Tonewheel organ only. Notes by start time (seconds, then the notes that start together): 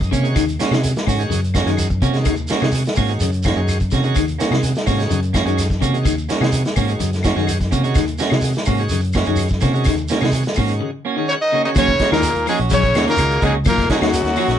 0.12 C#5
0.23 D#3 G#3 C#4 F#4
0.70 D#3 G#3 C#4 F#4
1.19 D#3 G#3 C#4 F#4
1.66 D#3 G#3 C#4 F#4
2.13 D#3 G#3 C#4 F#4
2.61 D#3 G#3 C#4 F#4
3.09 D#3 G#3 C#4 F#4
3.56 D#3 G#3 C#4 F#4
4.03 D#3 G#3 C#4 F#4
4.50 D#3 G#3 C#4 F#4
4.98 D#3 G#3 C#4 F#4
5.45 D#3 G#3 C#4 F#4
5.93 D#3 G#3 C#4 F#4
6.41 D#3 G#3 C#4 F#4
6.89 D#3 G#3 C#4 F#4
7.36 D#3 G#3 C#4 F#4
7.83 D#3 G#3 C#4 F#4
8.31 D#3 G#3 C#4 F#4
8.79 D#3 G#3 C#4 F#4
9.26 D#3 G#3 C#4 F#4
9.74 D#3 G#3 C#4 F#4
10.22 D#3 G#3 C#4 F#4
10.69 D#3 G#3 C#4 F#4
11.05 G#5
11.18 D#3 G#3 C#4 F#4
11.30 F#5
11.53 C#5
11.64 D#3 G#3 C#4 F#4
11.99 D#3 G#3 C#4 F#4
12.71 D#3 G#3 C#4 F#4
12.95 D#3 G#3 C#4 F#4
13.18 D#3 G#3 C#4 F#4
13.90 D#3 G#3 C#4 F#4